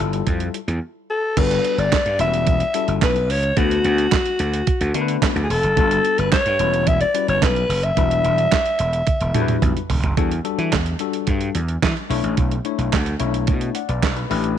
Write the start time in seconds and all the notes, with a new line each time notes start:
0.00 G1 G3 E4 F4 A4
0.13 closed hi-hat
0.27 F2, kick, closed hi-hat
0.40 closed hi-hat
0.54 closed hi-hat
0.68 E2, closed hi-hat
1.10 A4
1.37 G1 G3 B3 D4 F#4 A4 B4, kick, closed hi-hat, crash
1.51 closed hi-hat
1.65 closed hi-hat
1.78 G1 D5, closed hi-hat
1.92 kick, snare, clap, closed hi-hat
2.06 G2, closed hi-hat
2.19 E1 G3 C#4 E4 F#4 B4 E5, closed hi-hat
2.34 closed hi-hat
2.47 kick, closed hi-hat
2.60 closed hi-hat
2.74 G3 C#4 E4 F#4 A4, closed hi-hat
2.88 G1, closed hi-hat
3.02 B1 B4, kick, snare, clap, closed hi-hat
3.16 closed hi-hat
3.30 C#2 C#5, open hi-hat
3.43 closed hi-hat
3.57 D2 A3 B3 D4 E4 F#4 B4, kick, closed hi-hat
3.64 F#4
3.71 closed hi-hat
3.84 D2, closed hi-hat
3.98 closed hi-hat
4.12 kick, snare, clap, closed hi-hat
4.26 closed hi-hat
4.39 D2, closed hi-hat
4.54 closed hi-hat
4.67 kick, closed hi-hat
4.81 D2, closed hi-hat
4.94 D3 A3 B3 D4 F#4 A#4, closed hi-hat
5.01 B4
5.08 closed hi-hat
5.22 kick, snare, clap, closed hi-hat
5.36 D2, closed hi-hat
5.44 G#4
5.50 E1 A4, open hi-hat
5.63 F#1, closed hi-hat
5.77 G1 G3 B3 D4 F#4 A4, kick, closed hi-hat
5.91 closed hi-hat
6.05 closed hi-hat
6.18 G1 B4, closed hi-hat
6.32 C#5, kick, snare, clap, closed hi-hat
6.46 G2, closed hi-hat
6.59 E1 G3 C#4 E4 F#4 B4, closed hi-hat
6.74 closed hi-hat
6.87 E5, kick, closed hi-hat
7.01 D5, closed hi-hat
7.14 G3 C#4 E4 F#4 B4, closed hi-hat
7.28 G1 C#5, closed hi-hat
7.42 B1 B4, kick, snare, clap, closed hi-hat
7.56 closed hi-hat
7.69 F#1, open hi-hat
7.83 E5, closed hi-hat
7.97 E1 G3 D4 E4 F#4 B4, kick, closed hi-hat
8.11 closed hi-hat
8.24 E1, closed hi-hat
8.38 closed hi-hat
8.52 kick, snare, clap, closed hi-hat
8.66 closed hi-hat
8.79 E1, closed hi-hat
8.93 closed hi-hat
9.07 kick, closed hi-hat, high tom
9.21 E1, closed hi-hat
9.34 E2 G3 D4 E4 F#4 A4, closed hi-hat, mid tom
9.42 B4
9.48 closed hi-hat, mid tom
9.62 B1, kick, closed hi-hat, mid tom
9.77 closed hi-hat
9.90 E1, floor tom, open hi-hat
10.03 F#1, closed hi-hat, floor tom
10.17 E2 G3 D4 F#4 A4, kick, closed hi-hat
10.32 closed hi-hat
10.44 G3 D4 F#4 A4, closed hi-hat
10.58 E3, closed hi-hat
10.72 E2, kick, snare, clap, closed hi-hat
10.86 closed hi-hat
10.99 G3 D4 F#4 A4, closed hi-hat
11.13 closed hi-hat
11.27 G2, kick, closed hi-hat
11.41 closed hi-hat
11.55 E2, closed hi-hat
11.68 closed hi-hat
11.82 E3, kick, snare, clap, closed hi-hat
11.97 closed hi-hat
12.10 B1 A3 D4 E4 C#5, open hi-hat
12.23 A1, closed hi-hat
12.37 B1, kick, closed hi-hat
12.52 closed hi-hat
12.65 A3 D4 E4 C#5, closed hi-hat
12.78 B1, closed hi-hat
12.93 D2, kick, snare, clap, closed hi-hat
13.06 closed hi-hat
13.19 B1 A3 C#4 E4 C#5, closed hi-hat
13.26 D4
13.34 closed hi-hat
13.47 B2, kick, closed hi-hat
13.61 closed hi-hat
13.75 D5 F#5, closed hi-hat
13.89 B1 B4 D5, closed hi-hat
14.03 B1, kick, snare, clap, closed hi-hat
14.17 B4, closed hi-hat
14.30 A1 A3 D4 G4 B4, open hi-hat
14.44 closed hi-hat